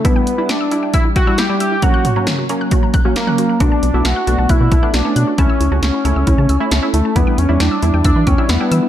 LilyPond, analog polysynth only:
\new Staff \with { instrumentName = "Analog polysynth" } { \time 4/4 \key e \dorian \tempo 4 = 135 <g d' e'>8 r16 <g d' e'>8 r16 <g d' e'>4 r16 <g d' e'>8 <g d' e'>8 r16 | <fis ais cis'>8 r16 <fis ais cis'>8 r16 <fis ais cis'>4 r16 <fis ais cis'>8 <fis ais cis'>8 r16 | <a b d'>8 r16 <a b e'>8 r16 <a b d'>4 r16 <a b d'>8 <a b cis'>8 r16 | <a cis' e'>8 r16 <a cis' fis'>8 r16 <a cis' e'>4 r16 <a cis' e'>8 <a cis' e'>8 r16 |
<g d' e'>8 r16 <g d' e'>8 r16 <g d' e'>4 r16 <g d' e'>8 <g d' e'>8 r16 | }